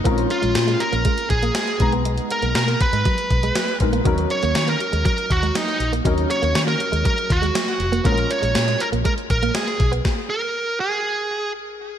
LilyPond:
<<
  \new Staff \with { instrumentName = "Lead electric guitar" } { \time 4/4 \key ees \minor \tempo 4 = 120 r8 f'4 bes'4 aes'8 aes'8. r16 | r8 bes'8 bes'8 ces''2 r8 | r8 des''8 des''16 bes'8. bes'8 ges'8 ees'8. r16 | r8 des''8 des''16 bes'8. bes'8 ges'4. |
bes'8 des''4 bes'8 bes'8 bes'8 aes'8. r16 | r8 bes'4 aes'4. r4 | }
  \new Staff \with { instrumentName = "Grand piano" } { \time 4/4 \key ees \minor <aes c' des' f' bes'>2.~ <aes c' des' f' bes'>8 <aes ces' ees' bes''>8~ | <aes ces' ees' bes''>2.~ <aes ces' ees' bes''>8 <aes ces' ees' bes'>8 | <ges des' ees' bes'>1 | <ges des' ees' bes'>1 |
<aes des' f' aes' bes'>2.~ <aes des' f' aes' bes'>8 r8 | r1 | }
  \new Staff \with { instrumentName = "Clean electric guitar" } { \clef bass \time 4/4 \key ees \minor bes16 r8 aes16 r16 aes16 r16 bes16 aes16 r8 bes16 aes16 r8 ces'16 | aes16 r8 bes16 r16 bes16 r16 aes16 ges16 r8 aes16 ges16 r8 bes16 | ees'16 r8 bes16 r16 bes16 r16 aes16 ges16 r8 aes16 ges16 r8 bes16 | ees'16 r8 bes16 r16 bes16 r16 aes16 ges16 r8 aes16 ges16 r8 bes16 |
bes16 r8 aes16 r16 aes16 r16 bes16 aes16 r8 bes16 aes16 r8 ces'16 | r1 | }
  \new Staff \with { instrumentName = "Fingered electric bass" } { \clef bass \time 4/4 \key ees \minor bes,,8 r16 bes,,16 bes,8 r16 bes,,16 r8 bes,,8 r8 ces,8~ | ces,8 r16 ces,16 ces8 r16 aes,16 r8 ces,8 r8 bes,,8 | ees,8 r16 ees,16 ees8 r16 ees,16 r8 ees,8 r8 bes,,8 | ees,8 r16 ees,16 ees8 r16 ees,16 r8 ees,8 r8 f,,8 |
bes,,8 r16 bes,,16 bes,8 r16 bes,,16 r8 bes,,8 r8 ces,8 | r1 | }
  \new DrumStaff \with { instrumentName = "Drums" } \drummode { \time 4/4 <hh bd>16 hh16 hh16 hh16 <hh sn>16 hh16 hh16 hh16 <hh bd>16 hh16 <hh bd>16 hh16 <hh sn>16 hh16 <hh bd>16 hh16 | hh16 hh16 hh16 hh16 <hh sn>16 hh16 <hh bd>16 hh16 <hh bd>16 hh16 <hh bd>16 hh16 <hh sn>16 hh16 <hh bd>16 hh16 | <hh bd>16 hh16 hh16 hh16 <hh sn>16 hh16 hh16 hh16 <hh bd>16 hh16 <hh bd>16 hh16 <hh sn>16 hh16 hh16 hh16 | <hh bd>16 hh16 hh16 hh16 <hh sn>16 hh16 hh16 hh16 <hh bd>16 hh16 <hh bd>16 hh16 <hh sn>16 hh16 hh16 hh16 |
<hh bd>16 hh16 hh16 hh16 <hh sn>16 hh16 hh16 hh16 <hh bd>16 hh16 <hh bd>16 hh16 <hh sn>16 hh16 <hh bd>16 hh16 | <bd sn>4 r4 r4 r4 | }
>>